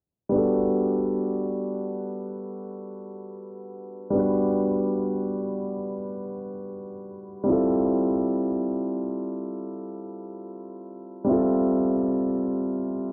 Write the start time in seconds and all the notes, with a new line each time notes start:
0.29 G3 B3
0.34 D4 F#4
0.38 A4
4.10 G3 B3
4.15 D4 F#4
4.19 B4
7.44 G3 C4
7.48 E4 F4
7.52 A4
11.24 G3 C4
11.29 F4 E5
11.33 A4